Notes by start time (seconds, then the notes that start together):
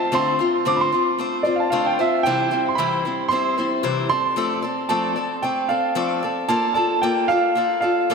Already playing: C4 F4 C5 A5
0.12 D3 A3 C4 F4 C5 C6
0.39 C4 F4 C5
0.65 D3 A3 C4 F4 C5 D6
0.77 B5
0.81 C6
0.92 C4 F4 C5
1.18 A3 C4 F4 C5
1.43 C4 F4 C5 D5
1.56 F5
1.60 A5
1.70 D3 A3 C4 F4 C5 F5
1.86 G5
1.99 C4 F4 C5 E5
2.23 C3 E3 G3 C4 E4 C5 G5
2.51 G3 C4 E4 C5
2.69 C6
2.75 C3 E3 G3 C4 E4 B5
2.80 C5
3.05 G3 C4 E4 C5
3.29 G3 C4 E4 C6
3.33 C5
3.58 G3 C4 E4 C5
3.83 C3 E3 G3 C4 E4 C5
4.09 C4 A4 D5 C6
4.36 F3 A3 C4 A4 D5
4.62 C4 A4 D5
4.89 F3 A3 C4 A4 D5 A5
5.16 C4 A4 D5
5.42 A3 C4 A4 D5 G5
5.69 C4 A4 D5 F5
5.95 F3 A3 C4 A4 D5
6.23 C4 A4 D5
6.48 A#3 F4 A4 D5 A5
6.74 F4 A4 D5 A5
7.02 A#3 F4 A4 D5 G5
7.28 F4 A4 D5 F5
7.55 A#3 F4 A4 D5
7.81 F4 A4 D5 F5
8.10 A#3 F4 A4 D5